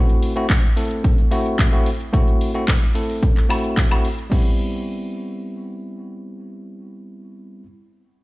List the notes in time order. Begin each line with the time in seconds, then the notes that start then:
Already playing: A3 C4 E4 F#4
0.09 closed hi-hat
0.22 open hi-hat
0.36 A3 C4 E4 F#4, closed hi-hat
0.50 kick, clap, closed hi-hat
0.64 closed hi-hat
0.76 A3 C4 E4 A4, open hi-hat
0.91 closed hi-hat
1.04 kick, closed hi-hat
1.18 closed hi-hat
1.31 A3 C4 E4 F#4, open hi-hat
1.46 closed hi-hat
1.59 kick, clap, closed hi-hat
1.72 A3 C4 E4 F#4, closed hi-hat
1.86 open hi-hat
2.00 closed hi-hat
2.13 A3 C4 E4 F#4, kick, closed hi-hat
2.28 closed hi-hat
2.41 open hi-hat
2.54 A3 C4 E4 F#4, closed hi-hat
2.68 kick, clap, closed hi-hat
2.82 closed hi-hat
2.94 A3 C4 E4 A4, open hi-hat
3.10 open hi-hat
3.23 kick, closed hi-hat
3.37 clap, closed hi-hat
3.49 A3 C4 E4 F#4, open hi-hat, high woodblock
3.64 closed hi-hat
3.77 kick, clap, closed hi-hat
3.91 A3 C4 E4 F#4, closed hi-hat, high woodblock
4.05 open hi-hat
4.19 closed hi-hat
4.30 G3 B3 C4 E4, kick, crash